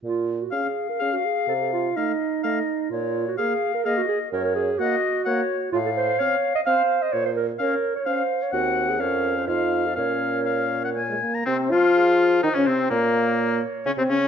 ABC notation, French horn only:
X:1
M:3/4
L:1/16
Q:1/4=126
K:Bbm
V:1 name="French horn"
z4 D4 D4 | z4 =A,4 A,4 | z4 B,4 B,4 | z4 B,4 B,4 |
z4 C4 C4 | z4 D4 D4 | C4 D4 E4 | D8 B, A, B,2 |
[K:Fm] C2 F6 E D C2 | B,6 z2 D C D2 |]